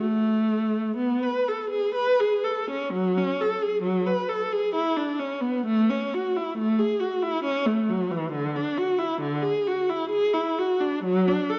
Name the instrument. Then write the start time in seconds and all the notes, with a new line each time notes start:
viola
0.00 A3
0.97 B3
1.23 B4
1.48 A4
1.70 G#4
1.95 B4
2.20 G#4
2.44 A4
2.70 C#4
2.93 F#3
3.18 C#4
3.41 A4
3.62 G#4
3.82 F#3
4.06 B4
4.29 A4
4.52 G#4
4.75 E4
4.97 D4
5.19 C#4
5.41 B3
5.66 A3
5.90 C#4
6.14 F#4
6.36 E4
6.58 A3
6.79 G#4
7.00 F#4
7.22 E4
7.44 C#4
7.66 A3
7.89 F#3
8.11 E3
8.32 D3
8.56 D4
8.77 F#4
8.98 E4
9.21 D3
9.42 G#4
9.67 F#4
9.90 E4
10.10 G#4
10.34 E4
10.58 F#4
10.80 D4
11.04 F#3
11.28 D4
11.49 A4